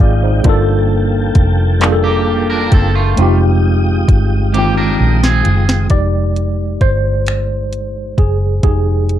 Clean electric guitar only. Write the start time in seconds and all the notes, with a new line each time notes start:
2.04 A#3 G4
2.50 D4 A#4
2.73 C4 A4
2.95 A3 F4
4.54 A#3 G4
4.77 D4 A#4
5.23 C4 G#4